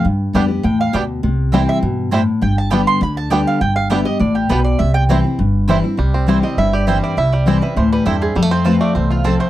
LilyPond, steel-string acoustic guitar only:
\new Staff \with { instrumentName = "Steel-string acoustic guitar" } { \clef bass \time 4/4 \key c \major \tempo 4 = 202 << { r4 <d g b g'>8 <b g'>8 r2 | r4 <e g c' e'>4 r2 | r4 <d g b g'>4 r4 <d g b g'>4 | r4 <d g b g'>8 <b g'>8 r2 |
r4 <e g c' e'>8 <c' e'>8 r4 <e g c' e'>8 <c' e'>8 | r4 <e g c' e'>8 <c' e'>8 r4 <e g c' e'>4 | r4 <e g c' e'>8 <c' e'>8 r2 | r4 <f a c' f'>4 r2 | } \\ { g,2 a,4 b,4 | c2 b,4 a,4 | g,2 d2 | g,2 a,4 b,4 |
c2 g,2 | c2 g,2 | c2 a,4 g,4 | f,2 e,4 f,4 | } >> }